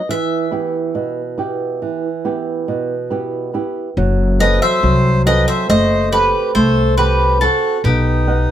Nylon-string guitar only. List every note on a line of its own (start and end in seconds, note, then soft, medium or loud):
0.09 0.93 E3 medium
0.51 1.20 B3 soft
0.51 1.21 E4 soft
0.51 1.21 G4 soft
0.95 1.79 B2 medium
1.38 2.07 B3 soft
1.38 2.07 E4 soft
1.38 2.08 G4 soft
1.82 2.65 E3 medium
2.25 2.94 B3 soft
2.25 2.94 E4 soft
2.25 2.94 G4 soft
2.68 3.51 B2 medium
3.10 3.53 B3 soft
3.10 3.53 E4 soft
3.10 3.53 G4 medium
3.54 3.88 B3 soft
3.54 3.88 E4 soft
3.54 3.89 G4 soft
3.97 4.81 F#3 medium
4.40 5.09 C4 soft
4.40 5.09 F#4 soft
4.40 5.09 A4 soft
4.83 5.66 F#3 medium
5.26 5.95 C4 soft
5.26 5.95 F#4 soft
5.26 5.95 A4 soft
5.69 6.53 A3 medium
6.13 6.81 C4 soft
6.13 6.82 A4 medium
6.13 6.82 F#5 soft
6.55 7.39 A3 medium
6.98 7.40 C4 soft
6.98 7.41 A4 medium
6.98 7.67 F#5 soft
7.42 7.76 C4 soft
7.42 7.76 F#4 soft
7.42 7.76 A4 medium
7.84 8.28 B3 medium
8.27 8.51 B4 soft
8.27 8.51 D#5 medium
8.27 8.51 F#5 soft